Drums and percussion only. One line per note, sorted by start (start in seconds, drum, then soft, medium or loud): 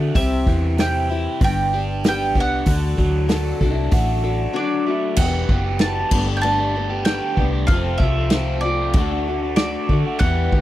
0.15 kick loud
0.15 open hi-hat medium
0.47 kick medium
0.78 snare loud
0.78 open hi-hat medium
1.41 kick loud
1.41 open hi-hat medium
2.04 snare loud
2.04 open hi-hat medium
2.35 kick medium
2.66 kick loud
2.66 open hi-hat medium
2.98 kick medium
3.29 snare loud
3.29 open hi-hat medium
3.61 kick medium
3.91 kick loud
3.91 open hi-hat medium
5.16 kick loud
5.16 crash loud
5.16 crash medium
5.49 kick medium
5.79 snare loud
5.79 crash medium
6.11 kick loud
6.11 crash loud
6.43 crash medium
7.05 snare loud
7.05 crash medium
7.37 kick medium
7.68 kick loud
7.68 crash medium
8.00 kick medium
8.30 snare loud
8.30 crash medium
8.93 kick loud
8.93 crash medium
9.56 snare loud
9.56 crash medium
9.89 kick medium
10.19 kick loud
10.19 crash medium
10.52 kick medium